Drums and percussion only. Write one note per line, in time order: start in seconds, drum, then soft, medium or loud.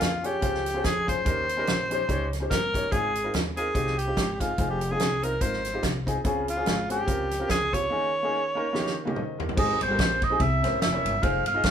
0.01 snare loud
0.01 closed hi-hat medium
0.24 closed hi-hat medium
0.42 kick medium
0.42 closed hi-hat medium
0.55 snare soft
0.66 snare soft
0.66 closed hi-hat medium
0.84 kick medium
0.84 snare medium
0.84 closed hi-hat medium
1.08 kick medium
1.08 closed hi-hat medium
1.26 kick loud
1.26 closed hi-hat medium
1.49 closed hi-hat medium
1.67 snare loud
1.67 closed hi-hat medium
1.91 closed hi-hat medium
2.09 kick medium
2.09 closed hi-hat medium
2.33 snare soft
2.33 closed hi-hat medium
2.51 kick medium
2.51 snare medium
2.51 closed hi-hat medium
2.74 kick medium
2.74 closed hi-hat medium
2.92 kick loud
2.92 closed hi-hat medium
3.15 closed hi-hat medium
3.34 snare loud
3.34 closed hi-hat medium
3.57 closed hi-hat medium
3.75 kick medium
3.75 closed hi-hat medium
3.87 snare soft
3.99 closed hi-hat medium
4.17 kick medium
4.17 snare medium
4.17 closed hi-hat medium
4.40 kick medium
4.40 closed hi-hat medium
4.58 kick loud
4.58 closed hi-hat medium
4.81 closed hi-hat medium
5.00 snare loud
5.00 closed hi-hat medium
5.23 closed hi-hat medium
5.41 kick medium
5.41 closed hi-hat medium
5.53 snare soft
5.65 snare soft
5.65 closed hi-hat medium
5.83 kick medium
5.83 snare loud
5.83 closed hi-hat medium
6.07 kick medium
6.07 closed hi-hat medium
6.25 kick loud
6.25 closed hi-hat medium
6.48 closed hi-hat medium
6.66 snare loud
6.66 closed hi-hat medium
6.90 closed hi-hat medium
7.08 kick loud
7.08 closed hi-hat medium
7.31 snare soft
7.31 closed hi-hat medium
7.49 kick medium
7.49 snare medium
7.49 closed hi-hat medium
7.73 kick medium
7.73 closed hi-hat medium
8.75 snare medium
8.87 snare medium
9.07 high tom medium
9.16 mid tom medium
9.40 floor tom loud
9.49 floor tom medium
9.57 kick loud
9.57 crash medium
9.81 ride medium
9.99 kick medium
9.99 snare loud
9.99 ride medium
10.22 kick medium
10.22 ride medium
10.40 kick loud
10.40 ride medium
10.64 snare soft
10.64 ride medium
10.82 snare loud
10.82 ride medium
11.06 ride medium
11.23 kick loud
11.23 ride medium
11.46 ride medium
11.64 kick medium
11.64 snare loud
11.64 ride medium